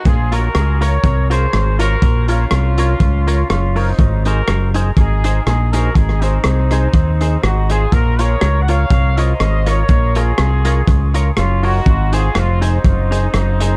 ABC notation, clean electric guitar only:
X:1
M:4/4
L:1/8
Q:"Swing" 1/4=122
K:Bbm
V:1 name="Clean electric guitar"
z [FBd] z [FBd] z [FBd] z [FBd] | z [FBd] z [FBd] z [FBd] z [FBd] | z [EAc] z [EAc] z [EAc] z [EAc] | z [EAc] z [EAc] z [EAc] z [EAc] |
z [FBd] z [FBd] z [FBd] z [FBd] | z [FBd] z [FBd] z [FBd] z [FBd] | z [EAc] z [EAc] z [EAc] z [EAc] |]